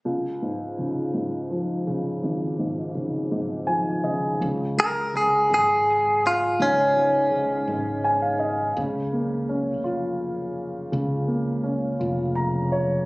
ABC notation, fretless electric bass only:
X:1
M:6/8
L:1/8
Q:3/8=55
K:Db
V:1 name="Fretless electric bass" clef=bass
z6 | z6 | D,,3 A,,,3 | D,,3 A,,,3 |
D,,3 F,,,3 | D,,3 F,,,3 |]